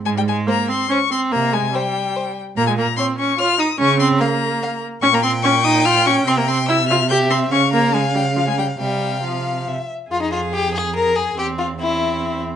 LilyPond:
<<
  \new Staff \with { instrumentName = "Violin" } { \time 3/4 \key aes \major \tempo 4 = 144 aes''16 g''16 aes''8 bes''8 c'''8 des'''8 c'''8 | bes''8 aes''8 g''4. r8 | bes''16 aes''16 bes''8 c'''8 des'''8 f'''8 ees'''8 | des'''8 c'''8 bes''4. r8 |
\key f \minor des'''16 bes''16 c'''8 des'''8 ees'''8 f'''8 des'''8 | c'''16 bes''16 c'''8 e'''8 f'''8 g'''8 c'''8 | des'''8 bes''8 aes''8 g''8 f''16 aes''16 g''8 | g''4 f''4 r4 |
f''16 ees''16 f''8 g''8 aes''8 bes''8 aes''8 | g''8 f''8 e''4. r8 | }
  \new Staff \with { instrumentName = "Violin" } { \time 3/4 \key aes \major r4 c''4 c''4 | r4 c''4 c''4 | r4 des''4 des''4 | r4 f''4 f''4 |
\key f \minor g''2.~ | g''4 e''4 e''4 | f''2. | f''2 e''8 r8 |
f'16 ees'16 f'8 g'8 aes'8 bes'8 aes'8 | g'8 f'8 e'4. r8 | }
  \new Staff \with { instrumentName = "Viola" } { \time 3/4 \key aes \major aes16 g16 aes8 bes8 c'8 des'8 c'8 | bes8 aes8 g4. r8 | bes16 aes16 bes8 c'8 des'8 f'8 ees'8 | des'8 c'8 bes4. r8 |
\key f \minor des'16 bes16 c'8 des'8 ees'8 f'8 des'8 | c'16 bes16 c'8 e'8 f'8 g'8 c'8 | des'8 bes8 aes8 g8 f16 aes16 g8 | g4 f4 r4 |
aes'2. | c'4 c'2 | }
  \new Staff \with { instrumentName = "Cello" } { \clef bass \time 3/4 \key aes \major aes,4 r2 | c4 r2 | bes,4 r2 | des4 r2 |
\key f \minor bes,2. | c2. | des2. | c2 c8 r8 |
f,2. | e,2. | }
>>